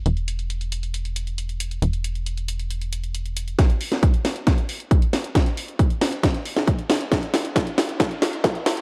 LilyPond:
<<
  \new Staff \with { instrumentName = "Analog synth bass" } { \clef bass \time 4/4 \key e \phrygian \tempo 4 = 136 e,,1 | e,,1 | r1 | r1 |
r1 | }
  \new DrumStaff \with { instrumentName = "Drums" } \drummode { \time 4/4 hh16 hh16 hh16 hh16 hh16 hh16 hh16 hh16 hh16 hh16 hh16 hh16 hh16 hh16 hh16 hh16 | hh16 hh16 hh16 hh16 hh16 hh16 hh16 hh16 hh16 hh16 hh16 hh16 hh16 hh16 hh16 hh16 | <hh bd sn>16 hh16 hho16 <hh sn>16 <hh bd>16 hh16 <hho sn>16 hh16 <hh bd sn>16 hh16 hho16 hh16 <hh bd>16 hh16 <hho sn>16 hh16 | <hh bd sn>16 hh16 hho16 hh16 <hh bd>16 hh16 <hho sn>16 hh16 <hh bd sn>16 hh16 hho16 <hh sn>16 <hh bd>16 hh16 <hho sn>16 hh16 |
<hh bd sn>16 hh16 <hho sn>16 hh16 <hh bd sn>16 hh16 <hho sn>16 hh16 <hh bd sn>16 hh16 <hho sn>16 hh16 <hh bd sn>16 hh16 <hho sn>16 hh16 | }
>>